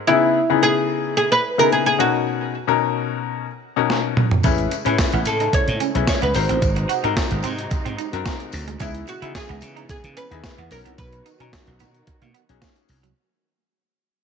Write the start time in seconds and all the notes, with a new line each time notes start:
0.07 C#3 B3 D#4 E4 G#4
0.50 C#3 B3 D#4 E4 G#4
0.63 G#4
1.17 G#4
1.32 B4
1.58 C#3 B3 D#4 E4 G#4 A#4
1.72 G#4
1.86 G#4
1.98 B2 C#4 D#4 F#4 A#4
2.67 B2 C#4 D#4 F#4 A#4
3.76 B2 C#4 D#4 F#4 A#4
3.90 snare
4.17 mid tom
4.31 floor tom
4.43 A1 C#3 G#3 A3 C#4 E4 G#4 B4, kick, closed hi-hat, tambourine
4.58 closed hi-hat
4.71 muted clean electric guitar stroke, closed hi-hat, tambourine
4.85 A2 C#4 E4 G#4 B4, closed hi-hat
4.98 kick, snare, closed hi-hat, tambourine
5.12 A1 B3, closed hi-hat
5.25 A2 A4, muted clean electric guitar stroke, closed hi-hat, tambourine
5.40 D#4, closed hi-hat
5.53 C#5, muted slap bass stroke, kick, closed hi-hat
5.68 A2, closed hi-hat
5.80 C#4, closed hi-hat, tambourine
5.95 B1 C#4 E4 G#4 B4, closed hi-hat
6.07 C#5, kick, snare, closed hi-hat, tambourine
6.22 C#2 B3 B4, closed hi-hat
6.34 G#1 C3 F#3 C4 D#4 F#4 A#4 C5, muted clean electric guitar stroke, open hi-hat, tambourine
6.49 A1 C4, closed hi-hat
6.62 G#1, kick, closed hi-hat, tambourine
6.76 muted clean electric guitar stroke, closed hi-hat
6.89 F#4, closed hi-hat, tambourine
7.03 G#2 C4 D#4 F#4 A#4, closed hi-hat
7.17 kick, snare, closed hi-hat, tambourine
7.31 G#1, closed hi-hat
7.43 G#2 C4, closed hi-hat, tambourine
7.59 closed hi-hat
7.71 muted clean electric guitar stroke, muted slap bass stroke, kick, closed hi-hat, tambourine
7.85 G#2 C4, closed hi-hat
7.98 D#4, closed hi-hat, tambourine
8.13 F#2 C4 D#4 F#4 A#4, closed hi-hat
8.26 C4, kick, snare, closed hi-hat, tambourine
8.40 muted clean electric guitar stroke, closed hi-hat
8.52 D2, open hi-hat, tambourine
8.68 G#3, closed hi-hat
8.79 C#2 C#3 E3 B3 C#4 D#4 E4 G#4, kick, closed hi-hat, tambourine
8.95 closed hi-hat
9.07 F#4, muted clean electric guitar stroke, closed hi-hat, tambourine
9.22 C#3 B3 D#4 E4 G#4, closed hi-hat
9.35 G#4, kick, snare, closed hi-hat, tambourine
9.49 C#2 B3, closed hi-hat
9.61 C#3, muted clean electric guitar stroke, closed hi-hat, tambourine
9.76 D#4, closed hi-hat
9.89 G#4, muted slap bass stroke, kick, closed hi-hat, tambourine
10.04 C#3, closed hi-hat
10.17 C#4 B4, closed hi-hat, tambourine
10.31 D#2 B3 D#4 E4 G#4, closed hi-hat
10.44 kick, snare, closed hi-hat, tambourine
10.58 E2 B3, closed hi-hat
10.71 B1 D#3 F#3 C#4 D#4 F#4 A#4, muted clean electric guitar stroke, open hi-hat, tambourine
10.85 C2 B3, closed hi-hat
10.98 B1 B4, kick, closed hi-hat, tambourine
11.12 muted clean electric guitar stroke, closed hi-hat
11.26 D#4, closed hi-hat, tambourine
11.40 B2 C#4 D#4 F#4 A#5, closed hi-hat
11.53 kick, snare, closed hi-hat, tambourine
11.67 B1, closed hi-hat
11.79 B2 B3, closed hi-hat, tambourine
11.94 closed hi-hat
12.07 muted slap bass stroke, muted clean electric guitar stroke, kick, closed hi-hat
12.22 B2 A#3, closed hi-hat
12.34 B3, closed hi-hat
12.49 B1 C#4 D#4 F#4 G#4, closed hi-hat
12.62 A#3, kick, snare, closed hi-hat, tambourine
12.76 muted clean electric guitar stroke, closed hi-hat
12.88 C2, open hi-hat, tambourine
13.03 F#3, closed hi-hat